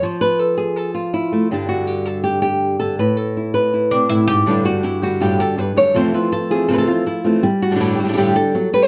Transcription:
0.03 nylon-string guitar F3 C5
0.21 nylon-string guitar B4
0.39 nylon-string guitar A4
0.58 nylon-string guitar G#4
0.76 nylon-string guitar A4
0.94 nylon-string guitar F4
1.14 nylon-string guitar E4
1.32 nylon-string guitar A3
1.51 nylon-string guitar G2 D3 G3 D4 A4
1.69 nylon-string guitar F#4
1.87 nylon-string guitar G4
2.06 nylon-string guitar A4
2.24 nylon-string guitar G4
2.42 nylon-string guitar G4
2.80 nylon-string guitar D3 A4
2.99 nylon-string guitar A2 B4
3.17 nylon-string guitar A4
3.37 nylon-string guitar E4
3.54 nylon-string guitar B4
3.74 nylon-string guitar E4
3.91 nylon-string guitar C4, oud D4
4.09 nylon-string guitar A2, oud E4
4.28 nylon-string guitar G#2, oud G4
4.46 nylon-string guitar G2 A2 D3 G3 D4 G4 A4
4.65 nylon-string guitar D3 G3 D4 F#4 G4
4.84 nylon-string guitar E4, muted nylon-string guitar stroke
5.02 nylon-string guitar D3 G3 D4 F#4 G4
5.20 nylon-string guitar G2 A2 D3 G3 D4 G4
5.39 nylon-string guitar D3 G3 D4 G4 A4
5.58 nylon-string guitar G2 B4, muted nylon-string guitar stroke
5.76 nylon-string guitar F#2 D3 G3 D4 G4 C#5
5.94 nylon-string guitar F2 C3 E3 F3 A3 C4 F4 C5
6.13 nylon-string guitar E3 A3 C4 F4 B4
6.32 nylon-string guitar A4, muted nylon-string guitar stroke
6.50 nylon-string guitar E3 A3 C4 F4 G#4
6.68 nylon-string guitar F2 C3 E3 A3 C4 F4 A4
6.73 nylon-string guitar B4
6.78 nylon-string guitar A4
6.87 nylon-string guitar E3 A3 C4 F4
7.06 nylon-string guitar E4, muted nylon-string guitar stroke
7.24 nylon-string guitar E3 A3 C4 F4
7.43 nylon-string guitar G3, muted nylon-string guitar stroke
7.62 nylon-string guitar F#4
7.71 nylon-string guitar A2 D3 G3 D4 G4
7.75 nylon-string guitar A2 D3 G3 D4 G4
7.80 nylon-string guitar G2 A2 D3 G3 D4 E4 G4
7.95 nylon-string guitar G4
7.99 nylon-string guitar D3 G3 D4 F#4
8.04 nylon-string guitar A2 D3 G3 D4 G4
8.08 nylon-string guitar A2 D3 G3 D4 G4
8.13 nylon-string guitar A2 D3 G3 D4 G4
8.17 nylon-string guitar G2 A2 D3 G3 D4 G4
8.36 nylon-string guitar D3 G3 D4 G4 A4
8.55 nylon-string guitar F#3, muted nylon-string guitar stroke
8.73 nylon-string guitar G3 B4
8.82 nylon-string guitar C5

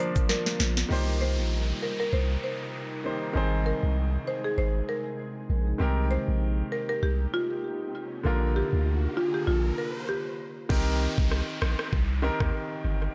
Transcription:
Already playing: ambient pad D3 A#3 F4 A#4, grand piano F3 A#3 D4 A#4 D5 F5
0.00 marimba C5
0.16 kick, shaker
0.29 marimba A#4, snare, shaker
0.46 snare, shaker
0.60 sub bass A#1, snare, closed hi-hat, shaker
0.77 snare, shaker
0.89 sub bass C2, ambient pad C3 G3 D#4 A#4, grand piano D#3 A#3 G4 C5, downlifter
1.21 marimba C5
1.38 sub bass A#1
1.82 marimba A#4
2.00 marimba A#4
2.13 sub bass C2, marimba C5
2.44 marimba C5
3.04 grand piano D#3 A#3 G4 C5
3.33 sub bass G#1, grand piano D#3 C4 G#4 C5, ambient pad G#3 G#4
3.66 marimba A#4
3.83 sub bass C2
4.27 marimba C5
4.44 marimba G#4
4.58 sub bass G#1, marimba C5
4.89 marimba A#4
5.50 sub bass A#1
5.78 sub bass C2, grand piano D#3 C4 G4 A#4, ambient pad A#3 G4, riser
6.11 marimba C5
6.28 sub bass A#1
6.72 marimba A#4
6.89 marimba A#4
7.03 sub bass C2, marimba G4
7.34 marimba F4
8.23 sub bass A#1, grand piano D3 A#3 F4 A#4, ambient pad D3 A#3 F4 A#4
8.56 marimba G4
8.73 sub bass D2
9.17 marimba F4
9.34 marimba G4
9.47 sub bass A#1, marimba F4
9.78 marimba A#4
10.09 marimba G4
10.69 sub bass C2, grand piano D#3 C4 G4 A#4, kick, crash, downlifter
11.18 sub bass C2, kick
11.31 cross-stick
11.62 sub bass A#1, cross-stick
11.79 cross-stick
11.93 sub bass C2, kick
12.22 grand piano D#3 C4 G4 A#4
12.40 sub bass D#2, kick, cross-stick
12.84 sub bass G1

